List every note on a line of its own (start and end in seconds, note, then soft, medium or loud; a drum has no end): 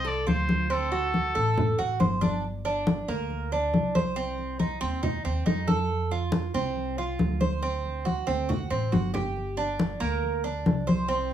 0.00 0.23 C2 loud
0.05 0.26 A4 medium
0.05 0.27 D5 medium
0.05 high conga soft
0.27 1.29 D2 loud
0.27 0.69 F4 medium
0.27 0.73 C5 medium
0.27 high conga medium
0.49 high conga medium
0.70 0.91 C4 medium
0.70 2.01 A4 loud
0.70 high conga soft
0.92 1.34 F#4 medium
0.92 high conga soft
1.14 high conga medium
1.35 1.76 A1 medium
1.35 1.77 A4 medium
1.57 high conga soft
1.57 low conga medium
1.79 1.99 A1 medium
1.79 1.99 F#4 medium
1.79 high conga soft
2.00 3.02 G1 loud
2.00 2.21 C5 medium
2.00 high conga medium
2.21 2.42 D4 medium
2.21 high conga medium
2.45 high conga soft
2.65 3.07 D4 medium
2.65 high conga soft
2.87 high conga loud
3.08 3.69 D2 medium
3.08 3.50 A#3 medium
3.08 high conga soft
3.30 high conga soft
3.52 3.94 D4 medium
3.52 high conga soft
3.73 4.75 C2 medium
3.73 high conga medium
3.95 4.16 C5 medium
3.95 high conga medium
4.16 4.58 C4 medium
4.16 high conga soft
4.38 high conga soft
4.59 4.80 D#4 medium
4.59 high conga medium
4.81 5.22 D#2 medium
4.81 5.02 C4 loud
5.03 5.24 D#4 medium
5.03 high conga soft
5.03 low conga medium
5.25 5.45 D#2 medium
5.25 5.46 C4 medium
5.25 high conga soft
5.46 6.48 F2 loud
5.46 5.67 D#4 medium
5.46 high conga medium
5.67 6.10 A4 medium
5.67 high conga medium
5.90 high conga soft
6.11 6.53 F4 medium
6.11 high conga soft
6.32 high conga loud
6.54 7.15 C2 loud
6.54 6.96 C4 medium
6.54 high conga soft
6.76 high conga soft
6.98 7.40 F4 medium
6.98 high conga soft
7.19 8.21 D2 loud
7.19 high conga medium
7.41 7.62 C5 medium
7.41 high conga medium
7.63 8.05 C4 medium
7.63 high conga soft
7.85 high conga soft
8.05 8.27 F#4 medium
8.05 high conga medium
8.27 8.68 D2 loud
8.27 8.48 C4 medium
8.49 8.70 F#4 medium
8.49 high conga soft
8.49 low conga medium
8.70 8.91 A1 medium
8.70 8.92 C4 medium
8.70 high conga soft
8.92 9.95 G1 loud
8.92 9.13 F#4 medium
8.92 high conga medium
9.14 9.56 G4 medium
9.14 low conga medium
9.37 high conga soft
9.57 9.99 D4 medium
9.57 high conga soft
9.79 high conga medium
10.00 10.62 D2 medium
10.00 10.42 A#3 loud
10.00 high conga soft
10.23 high conga soft
10.44 10.86 D4 medium
10.44 high conga soft
10.66 11.34 C2 loud
10.66 high conga loud
10.87 11.08 C5 medium
10.87 high conga medium
11.08 11.34 C4 medium
11.08 high conga soft